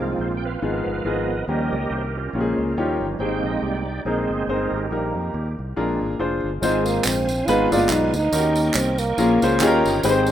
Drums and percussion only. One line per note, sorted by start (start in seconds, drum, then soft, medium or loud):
6.63 tambourine medium
6.86 tambourine medium
7.04 clap medium
7.04 tambourine medium
7.29 tambourine medium
7.48 tambourine medium
7.72 tambourine medium
7.89 clap loud
7.89 tambourine medium
8.14 tambourine medium
8.33 tambourine medium
8.56 tambourine medium
8.74 clap medium
8.74 tambourine medium
8.98 tambourine medium
9.18 tambourine medium
9.42 tambourine medium
9.60 clap medium
9.60 tambourine medium
9.85 tambourine medium
10.03 tambourine medium
10.27 tambourine medium